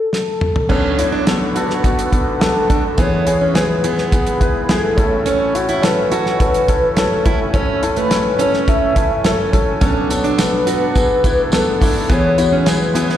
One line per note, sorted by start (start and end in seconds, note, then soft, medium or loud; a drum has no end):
0.13 0.72 A4 medium
0.13 snare soft
0.41 mid tom medium
0.56 floor tom medium
0.69 2.94 B1 medium
0.69 2.94 B2 medium
0.69 2.96 D3 medium
0.69 2.96 A3 soft
0.69 0.94 B3 medium
0.69 2.96 B3 soft
0.69 0.97 C#4 medium
0.69 0.95 D4 medium
0.69 2.96 F#4 medium
0.69 0.95 A4 medium
0.69 1.29 C#5 medium
0.69 kick medium
0.69 crash medium
0.97 1.23 B3 medium
0.97 1.23 D4 medium
0.97 1.24 E4 medium
0.97 closed hi-hat medium
1.12 1.26 D4 medium
1.26 1.51 B3 medium
1.26 1.52 D4 medium
1.26 1.52 A4 medium
1.26 1.84 B4 medium
1.26 snare medium
1.26 closed hi-hat medium
1.55 1.80 B3 medium
1.55 1.80 D4 medium
1.55 2.09 F#4 medium
1.55 1.81 A4 medium
1.55 closed hi-hat medium
1.70 snare soft
1.83 2.08 B3 medium
1.83 2.09 D4 medium
1.83 2.09 F#4 medium
1.83 2.43 B4 medium
1.83 kick medium
1.83 closed hi-hat medium
1.99 closed hi-hat medium
2.12 2.37 B3 medium
2.12 2.37 D4 medium
2.12 2.38 A4 medium
2.12 kick medium
2.12 closed hi-hat medium
2.40 2.65 B3 medium
2.40 2.66 D4 medium
2.40 2.66 A4 medium
2.40 3.01 A4 medium
2.40 snare loud
2.40 closed hi-hat medium
2.68 2.94 B3 medium
2.68 2.94 D4 medium
2.68 2.83 D4 medium
2.68 2.95 A4 medium
2.68 kick medium
2.68 closed hi-hat medium
2.97 4.93 E2 medium
2.97 4.93 E3 medium
2.97 9.78 E3 medium
2.97 4.96 G#3 medium
2.97 3.22 B3 medium
2.97 3.25 B3 medium
2.97 4.96 B3 medium
2.97 3.23 E4 medium
2.97 4.96 G#4 medium
2.97 3.23 G#4 medium
2.97 3.58 C#5 medium
2.97 kick loud
2.97 closed hi-hat medium
3.25 3.51 B3 medium
3.25 3.51 E4 medium
3.25 3.52 G#4 medium
3.25 closed hi-hat medium
3.41 3.55 C#4 medium
3.54 3.79 B3 medium
3.54 3.80 E4 medium
3.54 3.80 G#4 medium
3.54 4.13 B4 medium
3.54 snare medium
3.54 closed hi-hat medium
3.83 4.08 B3 medium
3.83 4.38 B3 medium
3.83 4.09 E4 medium
3.83 4.09 G#4 medium
3.83 closed hi-hat medium
3.98 snare soft
4.12 4.37 B3 medium
4.12 4.37 E4 medium
4.12 4.38 G#4 medium
4.12 4.73 B4 loud
4.12 kick medium
4.12 closed hi-hat medium
4.26 closed hi-hat medium
4.40 4.65 B3 medium
4.40 4.65 E4 medium
4.40 4.66 B4 medium
4.40 kick medium
4.40 closed hi-hat medium
4.69 4.94 B3 medium
4.69 4.94 E4 medium
4.69 4.95 G#4 medium
4.69 5.29 A4 medium
4.69 snare loud
4.69 closed hi-hat medium
4.97 7.22 A1 medium
4.97 7.22 A2 medium
4.97 9.78 A3 medium
4.97 5.47 C#4 medium
4.97 9.78 C#4 medium
4.97 5.48 E4 medium
4.97 7.24 A4 medium
4.97 5.48 A4 medium
4.97 kick medium
4.97 closed hi-hat medium
5.26 5.53 C#4 medium
5.26 5.87 C#5 medium
5.26 closed hi-hat medium
5.54 5.79 C#4 medium
5.54 5.79 E4 medium
5.54 5.80 F#4 medium
5.54 closed hi-hat medium
5.69 5.83 E4 medium
5.69 closed hi-hat soft
5.82 6.07 C#4 medium
5.82 6.08 E4 medium
5.82 6.09 A4 medium
5.82 6.41 B4 loud
5.82 snare medium
5.82 closed hi-hat medium
6.11 6.36 C#4 medium
6.11 6.37 E4 medium
6.11 6.65 F#4 medium
6.11 6.37 A4 medium
6.11 closed hi-hat medium
6.26 snare soft
6.39 6.65 C#4 medium
6.39 6.65 E4 medium
6.39 6.66 A4 medium
6.39 6.99 B4 loud
6.39 kick medium
6.39 closed hi-hat medium
6.54 closed hi-hat medium
6.68 6.93 C#4 medium
6.68 6.93 E4 medium
6.68 6.94 A4 medium
6.68 kick medium
6.68 closed hi-hat medium
6.96 7.22 C#4 medium
6.96 7.22 E4 medium
6.96 7.56 A4 medium
6.96 7.23 A4 medium
6.96 snare loud
6.96 closed hi-hat medium
7.25 9.50 A1 medium
7.25 9.50 A2 medium
7.25 7.50 C#4 medium
7.25 7.39 E4 medium
7.25 7.51 E4 medium
7.25 7.51 A4 medium
7.25 9.79 G#5 medium
7.25 kick medium
7.25 closed hi-hat medium
7.53 7.79 C#4 medium
7.53 7.81 C#4 medium
7.53 7.79 E4 medium
7.53 7.80 A4 medium
7.53 7.97 C#5 medium
7.53 kick loud
7.53 closed hi-hat medium
7.82 8.07 C#4 medium
7.82 8.08 E4 medium
7.82 8.08 A4 medium
7.82 closed hi-hat medium
7.96 8.11 A3 medium
7.96 8.42 B4 loud
7.96 closed hi-hat soft
8.10 8.35 C#4 medium
8.10 8.36 E4 medium
8.10 8.36 A4 medium
8.10 snare medium
8.10 closed hi-hat medium
8.39 8.64 C#4 medium
8.39 8.93 C#4 medium
8.39 8.65 E4 medium
8.39 8.65 A4 medium
8.39 8.68 C#5 medium
8.39 closed hi-hat medium
8.54 snare soft
8.67 8.92 C#4 medium
8.67 8.93 E4 medium
8.67 8.93 A4 medium
8.67 9.26 E5 loud
8.67 kick medium
8.67 closed hi-hat medium
8.96 9.21 C#4 medium
8.96 9.21 E4 medium
8.96 9.22 A4 medium
8.96 kick medium
8.96 closed hi-hat medium
9.24 9.49 C#4 medium
9.24 9.50 E4 medium
9.24 9.82 A4 medium
9.24 9.50 A4 medium
9.24 snare loud
9.24 closed hi-hat medium
9.52 9.78 C#4 medium
9.52 9.78 E4 medium
9.52 9.79 A4 medium
9.52 kick medium
9.52 closed hi-hat medium
9.81 12.06 B1 medium
9.81 12.06 B2 medium
9.81 12.07 F#3 medium
9.81 10.06 B3 medium
9.81 13.17 B3 medium
9.81 10.09 C#4 medium
9.81 10.07 D4 medium
9.81 12.07 D4 medium
9.81 12.08 A4 medium
9.81 10.07 A4 medium
9.81 10.35 C#5 medium
9.81 kick loud
9.81 closed hi-hat medium
10.09 10.35 B3 medium
10.09 10.35 D4 medium
10.09 10.36 A4 medium
10.09 closed hi-hat medium
10.09 tambourine soft
10.24 10.38 D4 medium
10.24 closed hi-hat soft
10.38 10.63 B3 medium
10.38 10.64 D4 medium
10.38 10.64 A4 medium
10.38 10.92 B4 medium
10.38 snare medium
10.38 closed hi-hat medium
10.38 tambourine medium
10.66 10.92 B3 medium
10.66 10.92 D4 medium
10.66 11.21 F#4 medium
10.66 10.93 B4 medium
10.66 closed hi-hat medium
10.66 tambourine soft
10.94 11.20 B3 medium
10.94 11.21 D4 medium
10.94 11.21 G#4 medium
10.94 11.56 B4 loud
10.94 kick medium
10.94 closed hi-hat medium
10.94 tambourine medium
11.23 11.49 B3 medium
11.23 11.49 D4 medium
11.23 11.50 E4 medium
11.23 kick medium
11.23 closed hi-hat medium
11.23 tambourine soft
11.52 11.77 B3 medium
11.52 11.78 D4 medium
11.52 11.78 A4 medium
11.52 12.13 A4 loud
11.52 snare loud
11.52 closed hi-hat medium
11.52 tambourine medium
11.81 12.06 B3 medium
11.81 11.95 D4 medium
11.81 12.06 D4 medium
11.81 12.07 E4 medium
11.81 kick medium
11.81 open hi-hat medium
11.81 tambourine soft
12.09 13.17 E2 medium
12.09 13.17 E3 medium
12.09 13.17 G#3 medium
12.09 12.34 B3 medium
12.09 12.37 B3 loud
12.09 12.35 E4 medium
12.09 13.17 E4 medium
12.09 12.35 G#4 medium
12.09 13.17 B4 medium
12.09 12.70 C#5 loud
12.09 kick loud
12.09 closed hi-hat medium
12.09 tambourine soft
12.37 12.63 B3 medium
12.37 12.63 E4 medium
12.37 12.64 F#4 medium
12.37 closed hi-hat medium
12.37 tambourine medium
12.52 12.66 C#4 medium
12.65 12.91 B3 medium
12.65 12.91 E4 medium
12.65 12.92 G#4 medium
12.65 13.17 B4 medium
12.65 snare medium
12.65 closed hi-hat medium
12.65 tambourine medium
12.94 13.17 B3 medium
12.94 13.17 E4 medium
12.94 13.17 G#4 medium
12.94 closed hi-hat medium
12.94 tambourine soft
13.09 snare soft